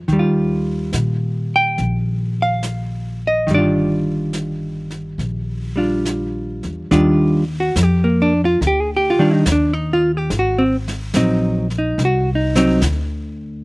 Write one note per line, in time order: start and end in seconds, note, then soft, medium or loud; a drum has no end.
0.00 0.10 B3 soft
0.00 0.12 D#4 soft
0.08 0.89 D#2 medium
0.08 3.46 D#3 soft
0.08 brush sweep soft
0.08 snare soft
0.13 3.49 G3 soft
0.19 3.53 F4 soft
0.93 1.75 A#2 medium
0.93 snare soft
0.93 hi-hat pedal soft
1.56 2.34 G5 medium
1.78 3.44 A#1 medium
1.78 brush sweep soft
1.78 snare soft
2.42 3.20 F5 medium
2.63 snare soft
2.63 hi-hat pedal soft
3.27 3.52 D#5 medium
3.47 5.14 G1 medium
3.47 6.90 D#3 soft
3.47 5.75 G3 soft
3.47 brush sweep soft
3.47 snare soft
3.54 5.76 D4 soft
3.54 5.77 F4 soft
3.54 6.03 D5 medium
4.33 snare soft
4.33 hi-hat pedal soft
4.91 snare soft
5.18 6.59 A#1 medium
5.18 brush sweep soft
5.18 snare soft
5.76 6.90 G3 soft
5.76 6.90 D4 soft
5.76 6.91 F4 soft
6.05 snare soft
6.05 hi-hat pedal soft
6.63 6.89 E2 soft
6.63 snare soft
6.91 7.73 D#2 medium
6.91 7.43 D#3 medium
6.91 7.43 G3 medium
6.91 7.43 D4 medium
6.91 7.43 F4 medium
6.91 brush sweep soft
6.91 snare soft
7.60 7.74 F#4 medium
7.75 8.58 F2 medium
7.75 snare soft
7.75 hi-hat pedal soft
7.83 8.07 G4 medium
8.04 8.32 A#3 soft
8.22 8.41 D4 medium
8.45 8.59 F4 medium
8.61 9.14 D2 medium
8.61 brush sweep soft
8.61 snare soft
8.67 8.81 G4 medium
8.81 8.89 G#4 medium
8.97 9.21 G4 medium
9.10 9.20 F4 medium
9.18 9.43 D#3 medium
9.18 9.43 G3 medium
9.18 9.43 D4 medium
9.18 9.33 F4 medium
9.18 muted upright bass stroke soft
9.33 9.45 D#4 medium
9.46 10.28 D#2 medium
9.46 snare soft
9.46 hi-hat pedal medium
9.52 9.73 D4 medium
9.73 10.01 D#4 medium
9.93 10.11 F4 medium
10.17 10.30 G4 medium
10.30 11.12 G#1 medium
10.30 brush sweep soft
10.30 snare soft
10.39 10.62 F#4 medium
10.59 10.76 C4 medium
10.88 snare soft
11.14 11.96 A#1 medium
11.14 11.66 F#3 soft
11.14 11.66 C4 soft
11.14 11.67 D#4 medium
11.14 snare soft
11.14 hi-hat pedal soft
11.70 snare soft
11.78 12.02 D#4 medium
11.98 12.80 C2 medium
11.98 brush sweep medium
11.98 snare soft
12.05 12.29 F#4 medium
12.35 12.56 D#4 medium
12.55 12.81 F#3 medium
12.55 12.80 C4 medium
12.55 12.81 D#4 medium
12.55 snare soft
12.81 13.64 D2 medium
12.81 snare medium
12.81 hi-hat pedal soft